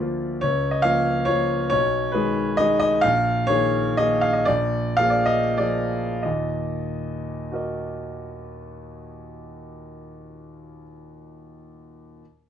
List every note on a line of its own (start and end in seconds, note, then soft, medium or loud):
0.00 0.46 D2 medium
0.00 0.46 F3 medium
0.00 0.46 A#3 medium
0.00 0.46 F4 medium
0.00 0.22 D5 medium
0.41 0.84 C#2 medium
0.41 0.73 C#5 loud
0.71 0.83 D#5 medium
0.82 1.24 F3 medium
0.82 1.25 A#3 medium
0.82 1.25 F4 medium
0.82 1.28 F5 loud
1.25 1.68 F3 medium
1.25 1.67 A#3 medium
1.25 1.68 F4 medium
1.25 1.68 C#5 loud
1.70 2.13 B1 medium
1.70 2.13 C#5 loud
2.12 2.55 D#3 medium
2.12 2.56 G#3 medium
2.12 2.56 G#4 medium
2.12 2.58 B4 loud
2.57 2.99 D#3 medium
2.57 2.99 G#3 medium
2.57 3.00 G#4 medium
2.57 2.78 D#5 loud
2.79 3.02 D#5 loud
3.01 3.48 A#1 medium
3.01 3.48 F5 loud
3.47 3.95 D#3 medium
3.47 3.95 A#3 medium
3.47 3.95 G#4 medium
3.47 3.97 C#5 loud
3.97 4.43 D#3 medium
3.97 4.44 A#3 medium
3.97 4.44 G#4 medium
3.97 4.22 D#5 loud
4.21 4.34 F5 loud
4.33 4.46 D#5 medium
4.45 4.97 A#1 medium
4.45 4.97 D5 loud
4.97 5.55 F3 medium
4.97 5.55 A#3 medium
4.97 5.55 G#4 medium
4.97 5.12 F5 loud
5.10 5.26 D5 medium
5.26 5.58 D#5 loud
5.58 6.21 F3 medium
5.58 6.21 A#3 medium
5.58 6.21 G#4 medium
5.58 6.24 D5 medium
6.23 9.55 D#2 medium
6.23 9.55 A#2 medium
6.23 7.54 D#5 medium
7.51 10.82 F#4 medium
7.51 10.84 A#4 soft
7.51 10.85 D#5 medium